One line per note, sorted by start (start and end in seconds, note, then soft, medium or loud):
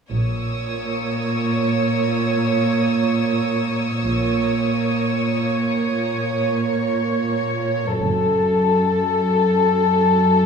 0.10 1.05 A#1 soft
0.10 4.01 A#2 soft
0.10 4.00 C#5 soft
0.10 7.46 C#6 soft
0.10 6.47 D#6 soft
0.10 5.49 E6 soft
4.05 4.99 A#1 soft
4.05 7.94 A#2 soft
4.05 7.94 C#5 soft
7.99 8.93 F#1 soft
7.99 10.46 F#2 soft
7.99 10.46 A4 soft